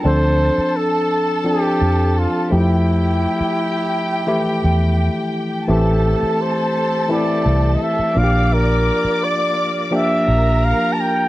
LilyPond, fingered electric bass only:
\new Staff \with { instrumentName = "Fingered electric bass" } { \clef bass \time 4/4 \key f \major \tempo 4 = 85 d,8. r4. r16 f,8. r16 f,8~ | f,8. r4. r16 e,8. r8. | a,,8. r4. r16 c,8 r8 bes,,8~ | bes,,8. r4. r16 bes,,8. r8. | }